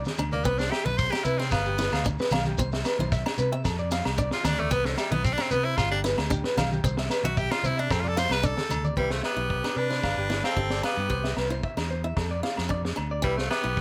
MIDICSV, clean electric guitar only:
0, 0, Header, 1, 3, 480
1, 0, Start_track
1, 0, Key_signature, 0, "major"
1, 0, Tempo, 532860
1, 411, Time_signature, 4, 2, 24, 8
1, 12439, End_track
2, 0, Start_track
2, 0, Title_t, "Clean electric guitar"
2, 0, Program_c, 0, 27
2, 295, Note_on_c, 0, 74, 59
2, 383, Note_off_c, 0, 74, 0
2, 409, Note_on_c, 0, 71, 88
2, 504, Note_off_c, 0, 71, 0
2, 531, Note_on_c, 0, 72, 73
2, 621, Note_off_c, 0, 72, 0
2, 645, Note_on_c, 0, 76, 69
2, 742, Note_off_c, 0, 76, 0
2, 1125, Note_on_c, 0, 71, 77
2, 1222, Note_off_c, 0, 71, 0
2, 1253, Note_on_c, 0, 72, 70
2, 1342, Note_off_c, 0, 72, 0
2, 1373, Note_on_c, 0, 77, 76
2, 1467, Note_off_c, 0, 77, 0
2, 1499, Note_on_c, 0, 67, 66
2, 1586, Note_off_c, 0, 67, 0
2, 1619, Note_on_c, 0, 71, 66
2, 1711, Note_off_c, 0, 71, 0
2, 1739, Note_on_c, 0, 77, 71
2, 1826, Note_off_c, 0, 77, 0
2, 1981, Note_on_c, 0, 71, 70
2, 2067, Note_off_c, 0, 71, 0
2, 2094, Note_on_c, 0, 77, 84
2, 2187, Note_off_c, 0, 77, 0
2, 2219, Note_on_c, 0, 67, 61
2, 2306, Note_off_c, 0, 67, 0
2, 2327, Note_on_c, 0, 72, 92
2, 2423, Note_off_c, 0, 72, 0
2, 2459, Note_on_c, 0, 76, 68
2, 2546, Note_off_c, 0, 76, 0
2, 2571, Note_on_c, 0, 71, 69
2, 2665, Note_off_c, 0, 71, 0
2, 2697, Note_on_c, 0, 72, 70
2, 2784, Note_off_c, 0, 72, 0
2, 2809, Note_on_c, 0, 76, 84
2, 2904, Note_off_c, 0, 76, 0
2, 3050, Note_on_c, 0, 71, 80
2, 3145, Note_off_c, 0, 71, 0
2, 3172, Note_on_c, 0, 76, 71
2, 3261, Note_off_c, 0, 76, 0
2, 3282, Note_on_c, 0, 69, 76
2, 3379, Note_off_c, 0, 69, 0
2, 3414, Note_on_c, 0, 74, 68
2, 3502, Note_off_c, 0, 74, 0
2, 3533, Note_on_c, 0, 77, 65
2, 3626, Note_off_c, 0, 77, 0
2, 3772, Note_on_c, 0, 74, 83
2, 3865, Note_off_c, 0, 74, 0
2, 4141, Note_on_c, 0, 74, 68
2, 4226, Note_off_c, 0, 74, 0
2, 4245, Note_on_c, 0, 71, 86
2, 4340, Note_off_c, 0, 71, 0
2, 4377, Note_on_c, 0, 72, 70
2, 4463, Note_off_c, 0, 72, 0
2, 4488, Note_on_c, 0, 76, 74
2, 4582, Note_off_c, 0, 76, 0
2, 4964, Note_on_c, 0, 71, 75
2, 5059, Note_off_c, 0, 71, 0
2, 5085, Note_on_c, 0, 72, 77
2, 5175, Note_off_c, 0, 72, 0
2, 5203, Note_on_c, 0, 77, 81
2, 5298, Note_off_c, 0, 77, 0
2, 5324, Note_on_c, 0, 67, 73
2, 5414, Note_off_c, 0, 67, 0
2, 5447, Note_on_c, 0, 71, 72
2, 5541, Note_off_c, 0, 71, 0
2, 5684, Note_on_c, 0, 67, 76
2, 5778, Note_off_c, 0, 67, 0
2, 5812, Note_on_c, 0, 71, 74
2, 5898, Note_off_c, 0, 71, 0
2, 5923, Note_on_c, 0, 77, 89
2, 6017, Note_off_c, 0, 77, 0
2, 6050, Note_on_c, 0, 67, 63
2, 6137, Note_off_c, 0, 67, 0
2, 6167, Note_on_c, 0, 72, 94
2, 6259, Note_off_c, 0, 72, 0
2, 6296, Note_on_c, 0, 76, 72
2, 6380, Note_off_c, 0, 76, 0
2, 6402, Note_on_c, 0, 71, 66
2, 6496, Note_off_c, 0, 71, 0
2, 6524, Note_on_c, 0, 76, 68
2, 6612, Note_off_c, 0, 76, 0
2, 6645, Note_on_c, 0, 76, 91
2, 6738, Note_off_c, 0, 76, 0
2, 6881, Note_on_c, 0, 72, 80
2, 6975, Note_off_c, 0, 72, 0
2, 7002, Note_on_c, 0, 76, 80
2, 7091, Note_off_c, 0, 76, 0
2, 7122, Note_on_c, 0, 69, 86
2, 7215, Note_off_c, 0, 69, 0
2, 7246, Note_on_c, 0, 74, 65
2, 7333, Note_off_c, 0, 74, 0
2, 7357, Note_on_c, 0, 77, 77
2, 7452, Note_off_c, 0, 77, 0
2, 7599, Note_on_c, 0, 74, 84
2, 7694, Note_off_c, 0, 74, 0
2, 7968, Note_on_c, 0, 74, 73
2, 8054, Note_off_c, 0, 74, 0
2, 8079, Note_on_c, 0, 71, 69
2, 8173, Note_off_c, 0, 71, 0
2, 8205, Note_on_c, 0, 72, 54
2, 8292, Note_off_c, 0, 72, 0
2, 8321, Note_on_c, 0, 76, 58
2, 8415, Note_off_c, 0, 76, 0
2, 8801, Note_on_c, 0, 71, 64
2, 8895, Note_off_c, 0, 71, 0
2, 8917, Note_on_c, 0, 72, 64
2, 9008, Note_off_c, 0, 72, 0
2, 9041, Note_on_c, 0, 77, 65
2, 9135, Note_off_c, 0, 77, 0
2, 9172, Note_on_c, 0, 67, 51
2, 9257, Note_off_c, 0, 67, 0
2, 9405, Note_on_c, 0, 77, 57
2, 9493, Note_off_c, 0, 77, 0
2, 9523, Note_on_c, 0, 67, 68
2, 9616, Note_off_c, 0, 67, 0
2, 9645, Note_on_c, 0, 74, 55
2, 9733, Note_off_c, 0, 74, 0
2, 9765, Note_on_c, 0, 77, 65
2, 9858, Note_off_c, 0, 77, 0
2, 9884, Note_on_c, 0, 67, 55
2, 9972, Note_off_c, 0, 67, 0
2, 9999, Note_on_c, 0, 72, 72
2, 10094, Note_off_c, 0, 72, 0
2, 10123, Note_on_c, 0, 76, 64
2, 10212, Note_off_c, 0, 76, 0
2, 10243, Note_on_c, 0, 71, 57
2, 10337, Note_off_c, 0, 71, 0
2, 10368, Note_on_c, 0, 72, 60
2, 10456, Note_off_c, 0, 72, 0
2, 10484, Note_on_c, 0, 76, 78
2, 10578, Note_off_c, 0, 76, 0
2, 10724, Note_on_c, 0, 72, 66
2, 10818, Note_off_c, 0, 72, 0
2, 10848, Note_on_c, 0, 76, 63
2, 10936, Note_off_c, 0, 76, 0
2, 10965, Note_on_c, 0, 69, 66
2, 11059, Note_off_c, 0, 69, 0
2, 11088, Note_on_c, 0, 74, 56
2, 11176, Note_off_c, 0, 74, 0
2, 11198, Note_on_c, 0, 77, 54
2, 11295, Note_off_c, 0, 77, 0
2, 11444, Note_on_c, 0, 74, 68
2, 11539, Note_off_c, 0, 74, 0
2, 11811, Note_on_c, 0, 74, 60
2, 11899, Note_off_c, 0, 74, 0
2, 11927, Note_on_c, 0, 71, 79
2, 12021, Note_off_c, 0, 71, 0
2, 12053, Note_on_c, 0, 72, 65
2, 12140, Note_off_c, 0, 72, 0
2, 12171, Note_on_c, 0, 76, 64
2, 12264, Note_off_c, 0, 76, 0
2, 12439, End_track
3, 0, Start_track
3, 0, Title_t, "Muted clean electric guitar strokes"
3, 1857, Note_on_c, 9, 29, 72
3, 1947, Note_off_c, 9, 29, 0
3, 5573, Note_on_c, 9, 29, 74
3, 5663, Note_off_c, 9, 29, 0
3, 12439, End_track
0, 0, End_of_file